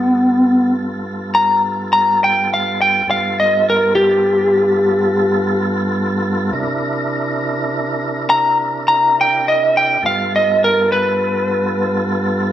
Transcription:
Already playing: tonewheel organ G2 B3 F4 A4, lead electric guitar B3
1.35 lead electric guitar A#5
1.93 lead electric guitar A#5
2.24 lead electric guitar G5
2.54 lead electric guitar F5
2.82 lead electric guitar G5
3.07 tonewheel organ G2 B3 F4 A4, lead electric guitar F5
3.40 lead electric guitar D#5
3.70 lead electric guitar A#4
3.95 lead electric guitar G4
6.52 tonewheel organ C3 D4 E4 A#4
8.30 lead electric guitar A#5
8.88 lead electric guitar A#5
9.21 lead electric guitar G5
9.48 lead electric guitar D#5
9.77 lead electric guitar G5
10.02 tonewheel organ G2 B3 F4 A4
10.06 lead electric guitar F5
10.36 lead electric guitar D#5
10.64 lead electric guitar A#4
10.92 lead electric guitar B4

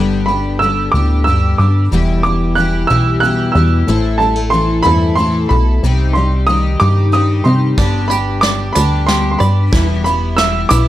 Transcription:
Already playing: analog synth bass G1, twelve-string acoustic guitar G2 D3 G3 B3 D4
0.00 twelve-string acoustic guitar G4
0.26 twelve-string acoustic guitar D4 G4, upright piano B5
0.30 twelve-string acoustic guitar G3 B3
0.59 steel-string acoustic guitar D3, twelve-string acoustic guitar G3 B3, upright piano E6
0.64 twelve-string acoustic guitar D4 G4
0.92 analog synth bass D2, steel-string acoustic guitar A2, twelve-string acoustic guitar D4 G4, upright piano D6
0.96 twelve-string acoustic guitar G2 D3 G3 B3
1.24 steel-string acoustic guitar G2, twelve-string acoustic guitar G3 B3, upright piano E6
1.29 twelve-string acoustic guitar D4 G4
1.58 analog synth bass G2, twelve-string acoustic guitar G3 B3 D4 G4, upright piano D6
1.92 analog synth bass E1, twelve-string acoustic guitar E2 B2 E3 G3 E4 G4, steel-string acoustic guitar B3
2.23 twelve-string acoustic guitar E3 G3 E4, upright piano D6
2.55 twelve-string acoustic guitar E3 G3 E4, upright piano F#6
2.60 twelve-string acoustic guitar G4
2.87 analog synth bass B1, twelve-string acoustic guitar G3 E4 G4, upright piano E6
2.91 twelve-string acoustic guitar E2 B2 E3
3.20 steel-string acoustic guitar B2, twelve-string acoustic guitar E3 G3, upright piano F#6
3.25 twelve-string acoustic guitar E4 G4
3.52 analog synth bass E2, twelve-string acoustic guitar G4, upright piano E6
3.57 twelve-string acoustic guitar E3 G3 E4
3.88 analog synth bass A1, twelve-string acoustic guitar A2 E3 C4 E4 A4
4.18 steel-string acoustic guitar G3, twelve-string acoustic guitar E4 A4, upright piano A5
4.23 twelve-string acoustic guitar C4
4.36 steel-string acoustic guitar A3
4.50 twelve-string acoustic guitar E3 C4 E4, upright piano C6
4.55 twelve-string acoustic guitar A4
4.83 analog synth bass E2, steel-string acoustic guitar G2, twelve-string acoustic guitar A2 E3 C4 E4 A4, upright piano B5
5.15 steel-string acoustic guitar A2, twelve-string acoustic guitar E3 C4 E4, upright piano C6
5.20 twelve-string acoustic guitar A4
5.49 analog synth bass B1, steel-string acoustic guitar B2, twelve-string acoustic guitar E4 A4, upright piano B5
5.83 analog synth bass C2, twelve-string acoustic guitar C3 G3 C4 D#4 G4
6.13 steel-string acoustic guitar G3, twelve-string acoustic guitar D#4 G4, upright piano C6
6.19 twelve-string acoustic guitar C4
6.47 steel-string acoustic guitar D#3, twelve-string acoustic guitar G3 C4 D#4 G4, upright piano D#6
6.80 analog synth bass G2, twelve-string acoustic guitar C3 G3 C4 D#4 G4, upright piano D6
7.12 steel-string acoustic guitar G2, twelve-string acoustic guitar G3 C4 D#4 G4, upright piano D#6
7.44 analog synth bass C3, steel-string acoustic guitar G3, twelve-string acoustic guitar C4 D#4 G4, upright piano C6
7.78 analog synth bass G1, twelve-string acoustic guitar G2 D3 G3 B3 D4 G4, five-string banjo D4, kick, snare, closed hi-hat
8.08 twelve-string acoustic guitar D4 G4, five-string banjo G4, upright piano B5, closed hi-hat
8.13 twelve-string acoustic guitar G3 B3
8.41 twelve-string acoustic guitar G3 B3 D4, five-string banjo D5, upright piano D6, snare, closed hi-hat
8.46 twelve-string acoustic guitar G4
8.73 analog synth bass D2, five-string banjo D4, twelve-string acoustic guitar G4, upright piano B5, closed hi-hat
8.77 twelve-string acoustic guitar G2 D3 G3 B3 D4
9.07 twelve-string acoustic guitar G3 B3 D4, five-string banjo G4, upright piano C6, snare, closed hi-hat
9.11 twelve-string acoustic guitar G4
9.31 upright piano C6
9.38 analog synth bass G2, twelve-string acoustic guitar D4 G4, five-string banjo D5, upright piano B5, closed hi-hat
9.43 twelve-string acoustic guitar G3 B3
9.72 analog synth bass E1, twelve-string acoustic guitar E2 B2 E3 G3 B3 E4, five-string banjo E4, kick, snare, closed hi-hat
10.04 twelve-string acoustic guitar G3 B3 E4, upright piano B5, closed hi-hat
10.08 twelve-string acoustic guitar E3
10.37 twelve-string acoustic guitar E3 G3 B3, five-string banjo E5, upright piano E6, snare, closed hi-hat
10.41 twelve-string acoustic guitar E4
10.69 analog synth bass B1, twelve-string acoustic guitar E3 G3 B3 E4, five-string banjo E4, upright piano D6, closed hi-hat
10.73 twelve-string acoustic guitar E2 B2

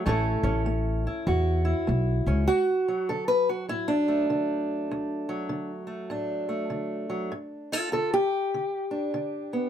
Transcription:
0.06 upright bass A1, steel-string acoustic guitar A2 A3 C#4 E4 A4
0.43 upright bass A1, steel-string acoustic guitar C#4
0.66 steel-string acoustic guitar A3
1.07 steel-string acoustic guitar E4
1.27 upright bass E2, steel-string acoustic guitar A2 F#4
1.65 steel-string acoustic guitar E4
1.87 upright bass B1, steel-string acoustic guitar A3
2.26 upright bass C#2, steel-string acoustic guitar C#4
2.48 steel-string acoustic guitar D2 F#4
2.88 steel-string acoustic guitar F#3
3.09 steel-string acoustic guitar D3 A4
3.28 steel-string acoustic guitar B4
3.49 steel-string acoustic guitar F#4
3.69 steel-string acoustic guitar A2 E4
3.88 steel-string acoustic guitar D4
4.08 steel-string acoustic guitar A3
4.30 steel-string acoustic guitar D3
4.91 steel-string acoustic guitar D2
5.29 steel-string acoustic guitar F#3
5.49 steel-string acoustic guitar D3
5.87 steel-string acoustic guitar A3
6.10 steel-string acoustic guitar A2 D4
6.49 steel-string acoustic guitar A3
6.70 steel-string acoustic guitar D3
7.10 steel-string acoustic guitar F#3
7.32 steel-string acoustic guitar G2
7.72 steel-string acoustic guitar F4 A4
7.92 steel-string acoustic guitar D3 F4 A4
8.14 steel-string acoustic guitar G4
8.54 steel-string acoustic guitar D3
8.91 steel-string acoustic guitar D4
9.14 steel-string acoustic guitar D3
9.53 steel-string acoustic guitar B3

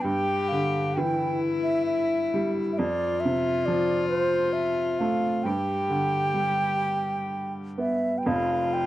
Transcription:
0.01 upright piano G2, cello G4, flute G5
0.48 upright piano D3, flute F5
0.94 upright piano E3, flute G5
0.99 cello E4
1.63 flute E5
1.86 flute E5
2.34 upright piano G3
2.73 flute E5
2.78 upright piano F2, cello F4, flute D5
3.20 flute E5
3.25 upright piano C3
3.66 upright piano F3, flute D5
4.09 flute C5
4.53 flute E5
4.99 upright piano A3, flute F5
5.44 upright piano G2, cello G4, flute G5
5.90 upright piano D3
6.34 upright piano G3
7.78 upright piano B3, flute E5
8.18 flute G5
8.26 upright piano F1 F2, cello F4, flute F5
8.74 flute G5

